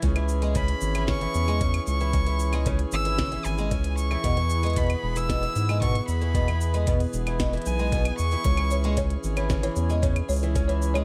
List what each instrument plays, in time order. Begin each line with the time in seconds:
0.03 analog synth bass C#2, twelve-string acoustic guitar C#3, harmonium E3 C#4 G#4, kick, closed hi-hat, cabasa
0.16 twelve-string acoustic guitar E3, closed hi-hat, cabasa, claves
0.29 cabasa
0.42 twelve-string acoustic guitar G#3, closed hi-hat, cabasa
0.55 twelve-string acoustic guitar C#3, violin B5, kick, closed hi-hat, cabasa
0.68 closed hi-hat, cabasa
0.81 analog synth bass G#1, cabasa
0.95 twelve-string acoustic guitar E3, closed hi-hat, cabasa, claves
1.08 twelve-string acoustic guitar C#3, violin C#6, kick, snare, cabasa
1.21 twelve-string acoustic guitar E3, closed hi-hat, cabasa
1.34 analog synth bass E2, cabasa
1.48 twelve-string acoustic guitar G#3, cabasa
1.61 twelve-string acoustic guitar C#3, kick, closed hi-hat, cabasa
1.74 closed hi-hat, cabasa, claves
1.87 analog synth bass C#2, violin C#6, cabasa
2.00 twelve-string acoustic guitar E3, cabasa
2.13 twelve-string acoustic guitar C#3, kick, closed hi-hat, cabasa
2.27 twelve-string acoustic guitar E3, closed hi-hat, cabasa
2.40 cabasa
2.53 twelve-string acoustic guitar G#3, closed hi-hat, cabasa, claves
2.66 twelve-string acoustic guitar C#3, kick, closed hi-hat, cabasa
2.79 closed hi-hat, cabasa
2.92 analog synth bass G#1, violin E6, cabasa
3.05 twelve-string acoustic guitar E3, closed hi-hat, cabasa
3.19 twelve-string acoustic guitar C#3, kick, snare, closed hi-hat, cabasa
3.32 twelve-string acoustic guitar E3, closed hi-hat, cabasa
3.45 analog synth bass G#1, violin G#5, cabasa
3.58 twelve-string acoustic guitar G#3, cabasa
3.71 analog synth bass C#2, twelve-string acoustic guitar C#3, kick, closed hi-hat, cabasa
3.84 closed hi-hat, cabasa
3.98 violin C#6, cabasa
4.11 twelve-string acoustic guitar E3, cabasa, claves
4.24 analog synth bass E2, twelve-string acoustic guitar B2, harmonium B3, kick, closed hi-hat, cabasa
4.37 twelve-string acoustic guitar E3, closed hi-hat, cabasa
4.50 cabasa
4.63 twelve-string acoustic guitar G#3, closed hi-hat, cabasa
4.66 closed hi-hat
4.70 closed hi-hat
4.73 closed hi-hat
4.76 twelve-string acoustic guitar B2, violin B5, kick, closed hi-hat, cabasa
4.83 closed hi-hat
4.86 closed hi-hat
4.90 closed hi-hat, cabasa, claves
5.03 analog synth bass E1
5.16 twelve-string acoustic guitar E3, violin E6, closed hi-hat, cabasa
5.29 twelve-string acoustic guitar B2, kick, snare, closed hi-hat, cabasa
5.43 twelve-string acoustic guitar E3, closed hi-hat, cabasa
5.56 analog synth bass G#2, cabasa
5.69 twelve-string acoustic guitar G#3, cabasa, claves
5.82 twelve-string acoustic guitar B2, violin C#6, kick, closed hi-hat, cabasa
5.95 closed hi-hat, cabasa
6.08 analog synth bass E2, violin B5, cabasa
6.21 twelve-string acoustic guitar E3, cabasa
6.34 twelve-string acoustic guitar B2, kick, closed hi-hat, cabasa
6.48 twelve-string acoustic guitar E3, closed hi-hat, cabasa, claves
6.61 cabasa
6.74 twelve-string acoustic guitar G#3, closed hi-hat, cabasa
6.87 twelve-string acoustic guitar B2, kick, closed hi-hat, cabasa
7.00 closed hi-hat, cabasa
7.03 cabasa
7.06 cabasa
7.08 cabasa
7.11 cabasa
7.13 analog synth bass E1, cabasa
7.27 twelve-string acoustic guitar E3, closed hi-hat, cabasa, claves
7.40 twelve-string acoustic guitar B2, kick, snare, closed hi-hat, cabasa
7.53 twelve-string acoustic guitar E3, closed hi-hat, cabasa
7.57 closed hi-hat
7.62 closed hi-hat
7.66 analog synth bass B1, violin G#5, cabasa
7.79 twelve-string acoustic guitar G#3, cabasa
7.92 twelve-string acoustic guitar B2, kick, closed hi-hat, cabasa
8.05 closed hi-hat, cabasa, claves
8.18 analog synth bass E2, violin C#6, cabasa
8.31 twelve-string acoustic guitar E3, cabasa
8.44 analog synth bass C#2, twelve-string acoustic guitar C#3, harmonium C#4, kick, closed hi-hat, cabasa
8.57 twelve-string acoustic guitar E3, closed hi-hat, cabasa, claves
8.71 marimba C#5, cabasa
8.84 twelve-string acoustic guitar G#3, closed hi-hat, cabasa
8.97 twelve-string acoustic guitar C#3, marimba C#5, kick, closed hi-hat, cabasa
9.10 closed hi-hat, cabasa
9.24 analog synth bass G#1, cabasa
9.37 twelve-string acoustic guitar E3, marimba C#5, closed hi-hat, cabasa, claves
9.50 twelve-string acoustic guitar C#3, kick, snare, cabasa
9.63 twelve-string acoustic guitar E3, marimba C#5, closed hi-hat, cabasa
9.76 analog synth bass E2, cabasa
9.90 twelve-string acoustic guitar G#3, cabasa
10.03 twelve-string acoustic guitar C#3, marimba C#5, kick, closed hi-hat, cabasa
10.16 closed hi-hat, cabasa, claves
10.29 analog synth bass C#2, marimba C#5, cabasa
10.33 cabasa
10.36 cabasa
10.39 cabasa
10.42 twelve-string acoustic guitar E3, cabasa
10.55 twelve-string acoustic guitar C#3, kick, closed hi-hat, cabasa
10.68 twelve-string acoustic guitar E3, marimba C#5, closed hi-hat, cabasa
10.82 cabasa
10.94 twelve-string acoustic guitar G#3, marimba C#5, closed hi-hat, cabasa, claves